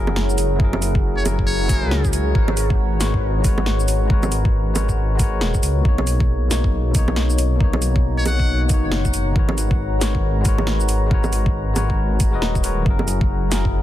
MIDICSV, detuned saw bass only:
0, 0, Header, 1, 2, 480
1, 0, Start_track
1, 0, Key_signature, 5, "minor"
1, 0, Tempo, 437956
1, 652, Time_signature, 4, 2, 24, 8
1, 15152, End_track
2, 0, Start_track
2, 0, Title_t, "Detuned saw bass"
2, 0, Program_c, 0, 39
2, 0, Note_on_c, 0, 30, 102
2, 398, Note_off_c, 0, 30, 0
2, 410, Note_on_c, 0, 30, 94
2, 1359, Note_off_c, 0, 30, 0
2, 1372, Note_on_c, 0, 30, 104
2, 1601, Note_off_c, 0, 30, 0
2, 1608, Note_on_c, 0, 30, 97
2, 1993, Note_on_c, 0, 37, 93
2, 2009, Note_off_c, 0, 30, 0
2, 2557, Note_off_c, 0, 37, 0
2, 2574, Note_on_c, 0, 32, 97
2, 3281, Note_off_c, 0, 32, 0
2, 3290, Note_on_c, 0, 32, 106
2, 4239, Note_off_c, 0, 32, 0
2, 4250, Note_on_c, 0, 32, 99
2, 5199, Note_off_c, 0, 32, 0
2, 5208, Note_on_c, 0, 32, 101
2, 5925, Note_on_c, 0, 27, 85
2, 5941, Note_off_c, 0, 32, 0
2, 6063, Note_off_c, 0, 27, 0
2, 6168, Note_on_c, 0, 37, 89
2, 6395, Note_off_c, 0, 37, 0
2, 6414, Note_on_c, 0, 35, 100
2, 7121, Note_off_c, 0, 35, 0
2, 7135, Note_on_c, 0, 35, 101
2, 8081, Note_off_c, 0, 35, 0
2, 8097, Note_on_c, 0, 35, 99
2, 9042, Note_off_c, 0, 35, 0
2, 9051, Note_on_c, 0, 35, 103
2, 9285, Note_off_c, 0, 35, 0
2, 9292, Note_on_c, 0, 35, 101
2, 9684, Note_on_c, 0, 30, 97
2, 9700, Note_off_c, 0, 35, 0
2, 10243, Note_off_c, 0, 30, 0
2, 10255, Note_on_c, 0, 32, 99
2, 10961, Note_off_c, 0, 32, 0
2, 10978, Note_on_c, 0, 32, 102
2, 11923, Note_off_c, 0, 32, 0
2, 11934, Note_on_c, 0, 32, 102
2, 12881, Note_off_c, 0, 32, 0
2, 12893, Note_on_c, 0, 32, 98
2, 13127, Note_off_c, 0, 32, 0
2, 13134, Note_on_c, 0, 32, 102
2, 13520, Note_on_c, 0, 27, 94
2, 13536, Note_off_c, 0, 32, 0
2, 14081, Note_off_c, 0, 27, 0
2, 14092, Note_on_c, 0, 30, 102
2, 14800, Note_off_c, 0, 30, 0
2, 14814, Note_on_c, 0, 30, 105
2, 15152, Note_off_c, 0, 30, 0
2, 15152, End_track
0, 0, End_of_file